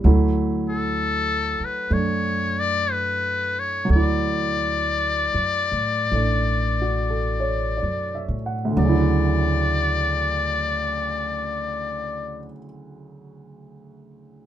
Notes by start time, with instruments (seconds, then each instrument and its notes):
0.04 upright bass D2, grand piano F#3 A3 E4
0.69 muted trumpet A4
1.60 muted upright bass stroke
1.65 muted trumpet B4
1.90 upright bass F#2, grand piano A3 D4, muted trumpet C#5
2.60 muted trumpet D5
2.92 muted trumpet B4
3.59 muted trumpet C#5
3.85 grand piano F#3 A3
3.89 upright bass D2, muted trumpet D5
3.96 grand piano E4
5.34 upright bass F#2
5.72 upright bass A2
6.12 upright bass A1, grand piano A3 D4
6.82 grand piano F#4
7.10 grand piano A4
7.40 grand piano C#5
7.77 grand piano D5
7.83 upright bass F#2
8.15 grand piano E5
8.28 upright bass A2
8.46 grand piano F#5
8.65 grand piano D2
8.71 grand piano D3
8.77 upright bass D2, grand piano F#3, muted trumpet D5
8.84 grand piano C#3
8.89 grand piano E4